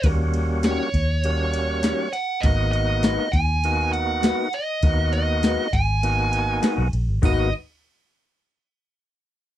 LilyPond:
<<
  \new Staff \with { instrumentName = "Lead electric guitar" } { \time 4/4 \key gis \minor \tempo 4 = 100 r4 cis''2~ cis''8 fis''8 | dis''8 dis''4 gis''4 fis''4 dis''8~ | dis''8 dis''4 gis''2 r8 | dis''8 r2. r8 | }
  \new Staff \with { instrumentName = "Clean electric guitar" } { \time 4/4 \key gis \minor r4 <dis g cis' fis'>8 r4. <dis g cis' fis'>8 r8 | r4 <gis dis' fis' b'>8 r4. <gis dis' fis' b'>8 r8 | r4 <gis dis' fis' b'>8 r4. <gis dis' fis' b'>8 r8 | <gis dis' fis' b'>8 r2. r8 | }
  \new Staff \with { instrumentName = "Tonewheel organ" } { \time 4/4 \key gis \minor <g ais cis' fis'>4. r8 <g ais cis' fis'>4. r8 | <ais b dis' fis'>4. r8 <ais b dis' fis'>4. r8 | <ais b dis' fis'>4. r8 <ais b dis' fis'>4. r8 | <ais b dis' fis'>8 r2. r8 | }
  \new Staff \with { instrumentName = "Fingered electric bass" } { \clef bass \time 4/4 \key gis \minor dis,4. dis,2 r8 | gis,,4. dis,2 r8 | dis,4. gis,,4.~ gis,,16 b,,16 ais,,16 gis,,16 | gis,,8 r2. r8 | }
  \new DrumStaff \with { instrumentName = "Drums" } \drummode { \time 4/4 <bd cymr>8 cymr8 <cymr sn>8 <bd cymr>8 cymr8 cymr8 <cymr sn>8 cymr8 | <bd cymr>8 cymr8 <cymr sn>8 <bd cymr>8 cymr8 cymr8 <cymr sn>8 cymr8 | <bd cymr>8 cymr8 <cymr sn>8 <bd cymr>8 cymr8 cymr8 <cymr sn>8 cymr8 | <cymc bd tomfh>4 r4 r4 r4 | }
>>